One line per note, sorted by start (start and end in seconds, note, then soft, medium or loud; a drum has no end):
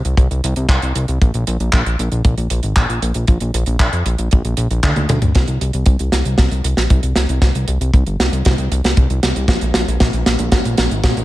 0.05 0.15 C2 medium
0.05 closed hi-hat medium
0.17 0.28 C2 loud
0.17 kick loud
0.17 closed hi-hat medium
0.31 0.41 C2 medium
0.31 closed hi-hat medium
0.44 0.54 C2 medium
0.44 closed hi-hat loud
0.56 0.67 C2 medium
0.56 closed hi-hat medium
0.69 0.79 C2 loud
0.69 kick loud
0.69 clap loud
0.69 closed hi-hat medium
0.82 0.93 C2 medium
0.82 closed hi-hat medium
0.95 1.06 C2 medium
0.95 closed hi-hat loud
1.08 1.19 C2 medium
1.08 closed hi-hat medium
1.22 1.32 A#1 loud
1.22 kick loud
1.22 closed hi-hat medium
1.34 1.45 A#1 medium
1.34 closed hi-hat medium
1.47 1.57 A#1 medium
1.47 closed hi-hat medium
1.60 1.70 A#1 medium
1.60 closed hi-hat medium
1.73 1.83 A#1 loud
1.73 kick medium
1.73 clap loud
1.73 closed hi-hat medium
1.86 1.96 A#1 medium
1.86 closed hi-hat medium
1.99 2.09 A#1 medium
1.99 closed hi-hat medium
2.12 2.22 A#1 medium
2.12 closed hi-hat medium
2.25 2.35 A#1 loud
2.25 kick loud
2.25 closed hi-hat medium
2.38 2.48 A#1 medium
2.38 closed hi-hat medium
2.50 2.61 A#1 medium
2.50 closed hi-hat medium
2.63 2.74 G#1 medium
2.63 closed hi-hat medium
2.76 2.87 A#1 loud
2.76 kick loud
2.76 clap loud
2.76 closed hi-hat medium
2.89 3.00 A#1 medium
2.89 closed hi-hat soft
3.02 3.13 A#1 loud
3.02 closed hi-hat loud
3.14 3.26 A#1 medium
3.14 closed hi-hat medium
3.27 3.38 A#1 loud
3.27 kick loud
3.27 closed hi-hat medium
3.40 3.51 A#1 medium
3.40 closed hi-hat medium
3.54 3.64 A#1 medium
3.54 closed hi-hat loud
3.66 3.77 A#1 medium
3.66 closed hi-hat medium
3.79 3.90 A#1 loud
3.79 kick loud
3.79 clap loud
3.79 closed hi-hat medium
3.93 4.03 F2 medium
3.93 closed hi-hat medium
4.06 4.16 A#1 medium
4.06 closed hi-hat loud
4.18 4.29 A#1 medium
4.18 closed hi-hat medium
4.31 4.42 A#1 loud
4.31 kick loud
4.31 closed hi-hat medium
4.45 4.55 A#1 medium
4.45 closed hi-hat medium
4.57 4.68 A#1 medium
4.57 closed hi-hat medium
4.71 4.81 A#1 medium
4.71 closed hi-hat medium
4.83 4.94 D2 loud
4.83 kick loud
4.83 clap loud
4.83 closed hi-hat medium
4.83 high tom medium
4.96 5.07 D2 medium
4.96 closed hi-hat medium
4.96 high tom medium
5.09 5.19 D2 medium
5.09 closed hi-hat medium
5.09 mid tom medium
5.22 5.32 D2 medium
5.22 closed hi-hat medium
5.22 mid tom medium
5.35 5.46 C2 loud
5.35 kick loud
5.35 snare soft
5.35 closed hi-hat medium
5.48 5.58 C2 medium
5.48 closed hi-hat medium
5.61 5.71 C2 medium
5.61 closed hi-hat medium
5.73 5.84 C2 medium
5.73 closed hi-hat medium
5.86 5.97 C2 loud
5.86 kick loud
5.86 closed hi-hat medium
5.99 6.10 C2 medium
5.99 closed hi-hat medium
6.12 6.23 C2 medium
6.12 snare medium
6.12 closed hi-hat loud
6.25 6.36 C2 medium
6.25 closed hi-hat medium
6.38 6.49 C2 loud
6.38 kick loud
6.38 snare medium
6.38 closed hi-hat medium
6.51 6.62 C2 medium
6.51 closed hi-hat medium
6.64 6.75 C2 medium
6.64 closed hi-hat loud
6.77 6.88 A#1 medium
6.77 snare soft
6.77 closed hi-hat medium
6.90 7.01 C2 loud
6.90 kick loud
6.90 closed hi-hat medium
7.03 7.13 C2 medium
7.03 closed hi-hat medium
7.16 7.26 C2 medium
7.16 snare medium
7.16 closed hi-hat medium
7.29 7.39 C2 medium
7.29 closed hi-hat medium
7.42 7.52 C2 loud
7.42 kick loud
7.42 snare medium
7.42 closed hi-hat medium
7.55 7.65 C2 medium
7.55 closed hi-hat medium
7.68 7.78 C2 medium
7.68 closed hi-hat medium
7.81 7.91 C2 medium
7.81 closed hi-hat medium
7.94 8.04 C2 loud
7.94 kick loud
7.94 closed hi-hat medium
8.07 8.17 G1 medium
8.07 closed hi-hat medium
8.20 8.30 C2 medium
8.20 snare medium
8.20 closed hi-hat medium
8.32 8.43 C2 medium
8.32 closed hi-hat medium
8.45 8.56 C2 loud
8.45 kick loud
8.45 snare medium
8.45 closed hi-hat medium
8.58 8.69 C2 medium
8.58 closed hi-hat medium
8.71 8.82 C2 loud
8.71 closed hi-hat loud
8.84 8.94 C2 medium
8.84 snare medium
8.84 closed hi-hat soft
8.97 9.07 C2 loud
8.97 kick loud
8.97 closed hi-hat medium
9.10 9.20 C2 medium
9.10 closed hi-hat soft
9.23 9.33 C2 medium
9.23 snare medium
9.23 closed hi-hat loud
9.36 9.46 C2 medium
9.36 closed hi-hat medium
9.48 9.59 A#1 loud
9.48 kick loud
9.48 snare medium
9.48 closed hi-hat medium
9.61 9.72 A#1 medium
9.61 closed hi-hat medium
9.74 9.85 A#1 medium
9.74 snare medium
9.74 closed hi-hat loud
9.88 9.98 A#1 medium
9.88 closed hi-hat medium
10.00 10.11 A#1 loud
10.00 kick loud
10.00 snare medium
10.00 closed hi-hat medium
10.13 10.24 A#1 medium
10.13 closed hi-hat medium
10.26 10.37 A#1 medium
10.26 snare medium
10.26 closed hi-hat loud
10.39 10.50 A#1 medium
10.39 closed hi-hat medium
10.52 10.62 A#1 loud
10.52 kick loud
10.52 snare medium
10.52 closed hi-hat medium
10.65 10.76 A#1 medium
10.65 closed hi-hat medium
10.78 10.88 A#1 medium
10.78 snare medium
10.78 closed hi-hat medium
10.91 11.01 G#1 medium
10.91 closed hi-hat soft
11.04 11.14 A#1 loud
11.04 kick loud
11.04 snare medium
11.04 closed hi-hat medium
11.17 11.24 A#1 medium
11.17 closed hi-hat medium